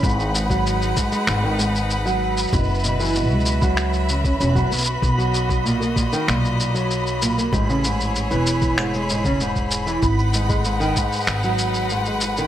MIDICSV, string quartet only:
0, 0, Header, 1, 2, 480
1, 0, Start_track
1, 0, Tempo, 625000
1, 25, Time_signature, 4, 2, 24, 8
1, 9578, End_track
2, 0, Start_track
2, 0, Title_t, "String quartet"
2, 0, Program_c, 0, 48
2, 10, Note_on_c, 0, 56, 73
2, 13, Note_on_c, 0, 63, 66
2, 13, Note_on_c, 0, 71, 63
2, 13, Note_on_c, 0, 78, 84
2, 1918, Note_off_c, 0, 56, 0
2, 1920, Note_off_c, 0, 63, 0
2, 1920, Note_off_c, 0, 78, 0
2, 1940, Note_on_c, 0, 66, 63
2, 1940, Note_on_c, 0, 76, 73
2, 1942, Note_on_c, 0, 54, 74
2, 3828, Note_off_c, 0, 71, 0
2, 3843, Note_off_c, 0, 76, 0
2, 3844, Note_off_c, 0, 54, 0
2, 3857, Note_on_c, 0, 75, 71
2, 3860, Note_on_c, 0, 58, 59
2, 5752, Note_off_c, 0, 66, 0
2, 5761, Note_off_c, 0, 75, 0
2, 5763, Note_off_c, 0, 58, 0
2, 5778, Note_on_c, 0, 64, 65
2, 5782, Note_on_c, 0, 68, 64
2, 5784, Note_on_c, 0, 73, 78
2, 7682, Note_off_c, 0, 64, 0
2, 7684, Note_off_c, 0, 68, 0
2, 7685, Note_off_c, 0, 73, 0
2, 7696, Note_on_c, 0, 56, 76
2, 7697, Note_on_c, 0, 71, 64
2, 7700, Note_on_c, 0, 63, 65
2, 7702, Note_on_c, 0, 78, 83
2, 9578, Note_off_c, 0, 56, 0
2, 9578, Note_off_c, 0, 63, 0
2, 9578, Note_off_c, 0, 71, 0
2, 9578, Note_off_c, 0, 78, 0
2, 9578, End_track
0, 0, End_of_file